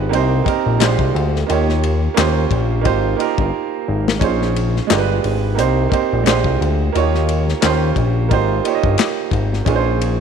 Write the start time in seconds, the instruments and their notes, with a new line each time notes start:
Already playing: analog synth bass G#1, upright piano G#3 D4 F4 G4 B4
0.09 analog synth bass C2, upright piano A#3 C4 D#4, ride
0.13 upright piano G4 C5
0.44 upright piano A#3 C4 D#4 G4, kick, ride
0.49 upright piano A#4
0.66 analog synth bass A#1
0.79 analog synth bass A#1, upright piano G#3 D4 F4 G4, snare, clap, ride
0.84 upright piano C5
0.99 analog synth bass C2, kick
1.15 analog synth bass D2, ride
1.36 snare
1.47 analog synth bass D#2, upright piano A#3 D#4 F4 G4, ride
1.51 upright piano C#5
1.69 snare
1.83 ride
2.14 analog synth bass D#2, upright piano A#3 C#4 F4 G4, snare, clap, ride
2.19 upright piano C5
2.51 analog synth bass A#1, kick, ride
2.81 upright piano A#3 D#4 F4, ride
2.85 analog synth bass G#1, upright piano G4 C5, kick
3.16 upright piano A#3 D#4 F4 G4, ride
3.21 upright piano A#4
3.38 analog synth bass G1, kick
3.88 analog synth bass G#1
4.08 snare
4.19 analog synth bass A#1, upright piano C#4 D#4 F4 G#4, kick, ride
4.24 upright piano C5
4.42 snare
4.56 ride
4.76 snare
4.87 upright piano G#3 D4 F4 G4, snare, clap, ride
4.91 analog synth bass G1, upright piano A#4
4.99 upright piano B4
5.24 analog synth bass G#1, open hi-hat, ride
5.55 analog synth bass C2, upright piano A#3 C4 D#4 G4, hi-hat pedal, ride
5.60 upright piano C5
5.89 upright piano A#3 C4 D#4 G4, kick, ride
5.94 upright piano C5
6.13 analog synth bass A#1
6.23 analog synth bass A#1, upright piano G#3 D4 F4 G4, ride
6.28 upright piano C5, snare, clap
6.44 analog synth bass C2, kick
6.61 analog synth bass D2, ride
6.93 analog synth bass D#2, upright piano A#3 D#4 F4 F#4, ride
6.97 upright piano C#5
7.03 upright piano G4
7.14 snare
7.29 ride
7.48 snare
7.61 analog synth bass D#2, upright piano A#3 C#4 F4 G4, snare, clap, ride
7.65 upright piano C5
7.96 analog synth bass A#1, kick, ride
8.29 analog synth bass G#1, upright piano A#3 D#4 F4 G4, kick, ride
8.33 upright piano C5
8.64 upright piano A#3 D#4 F4 G4, ride
8.69 upright piano C#5
8.75 upright piano D#5
8.84 analog synth bass G1, kick
8.98 snare, clap, ride
9.31 analog synth bass G#1, kick, ride
9.53 snare
9.65 analog synth bass A#1, upright piano C#4 D#4 F4 G#4, kick, ride
9.70 upright piano B4
9.76 upright piano C5
10.01 ride